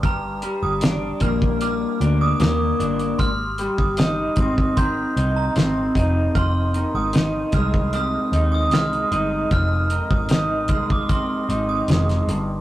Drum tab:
HH |x-x-x-x-x-x-x-xx|x-x-x-x-x-x-x-x-|x-x-x-x-x-x-xxx-|x-x-x-x-x-x-xxx-|
SD |----o-------o---|----o-------o---|----o-------o---|----o-------oo--|
BD |o-----oo--------|o--o--ooo-----o-|o-----oo--------|o--o--ooo-------|